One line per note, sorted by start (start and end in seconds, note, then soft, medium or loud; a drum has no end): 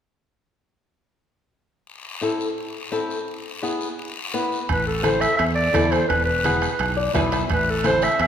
1.87 long guiro medium
2.21 2.46 C4 medium
2.21 2.47 E4 medium
2.21 2.47 A4 medium
2.21 short guiro medium
2.40 short guiro medium
2.58 long guiro medium
2.92 3.17 C4 medium
2.92 3.17 E4 medium
2.92 3.17 A4 medium
2.92 short guiro medium
3.10 short guiro medium
3.28 long guiro medium
3.62 3.87 B3 medium
3.62 3.88 E4 medium
3.62 3.88 G#4 medium
3.62 short guiro medium
3.81 short guiro medium
3.99 long guiro medium
4.34 4.58 B3 medium
4.34 4.58 E4 medium
4.34 4.58 B4 medium
4.34 short guiro medium
4.52 short guiro medium
4.69 5.25 A1 medium
4.69 4.86 B4 medium
4.69 bombo low medium
4.69 bombo rim medium
4.69 high conga soft
4.69 high timbale medium
4.69 long guiro medium
4.87 5.05 A4 medium
5.03 5.28 C4 medium
5.03 5.28 E4 medium
5.03 5.28 A4 medium
5.03 5.22 C5 medium
5.03 bombo rim medium
5.03 high conga medium
5.03 high timbale medium
5.03 short guiro medium
5.21 5.36 E5 medium
5.21 bombo rim medium
5.21 high timbale medium
5.21 short guiro medium
5.37 5.67 E2 loud
5.37 5.45 E5 medium
5.37 bombo rim medium
5.37 high conga soft
5.37 high timbale medium
5.37 long guiro medium
5.55 5.93 D5 medium
5.73 6.02 E2 medium
5.73 5.98 C4 medium
5.73 5.98 E4 medium
5.73 5.99 A4 medium
5.73 bombo low medium
5.73 bombo rim medium
5.73 high conga medium
5.73 high timbale medium
5.73 low timbale medium
5.73 short guiro medium
5.91 6.08 C5 medium
5.91 bombo rim medium
5.91 high timbale medium
5.91 short guiro medium
6.09 6.66 E1 medium
6.09 6.24 B4 medium
6.09 bombo low medium
6.09 bombo rim medium
6.09 high conga soft
6.09 high timbale medium
6.09 long guiro medium
6.25 6.92 B4 medium
6.44 6.69 B3 medium
6.44 6.69 E4 medium
6.44 6.70 G#4 medium
6.44 bombo rim medium
6.44 high conga medium
6.44 high timbale medium
6.44 short guiro medium
6.62 bombo rim medium
6.62 high timbale medium
6.62 short guiro medium
6.79 7.08 B1 loud
6.79 bombo rim medium
6.79 high conga soft
6.79 high timbale medium
6.79 long guiro medium
6.97 7.13 D5 medium
7.14 7.43 B1 medium
7.14 7.39 B3 medium
7.14 7.39 E4 medium
7.14 7.39 B4 medium
7.14 7.31 E5 medium
7.14 bombo low medium
7.14 bombo rim medium
7.14 high conga medium
7.14 high timbale medium
7.14 low timbale medium
7.14 short guiro medium
7.32 7.49 E5 medium
7.32 bombo rim medium
7.32 high timbale medium
7.32 short guiro medium
7.49 8.06 A1 medium
7.49 7.72 B4 medium
7.49 bombo low medium
7.49 bombo rim medium
7.49 high conga soft
7.49 high timbale medium
7.49 long guiro medium
7.70 7.86 A4 medium
7.83 8.09 C4 medium
7.83 8.09 E4 medium
7.83 8.09 A4 medium
7.83 8.05 C5 loud
7.83 bombo rim medium
7.83 high conga medium
7.83 high timbale medium
7.83 short guiro medium
8.02 8.21 E5 medium
8.02 bombo rim medium
8.02 high timbale medium
8.02 short guiro medium
8.19 8.27 E2 loud
8.19 8.26 E5 medium
8.19 bombo rim medium
8.19 high timbale medium
8.19 long guiro medium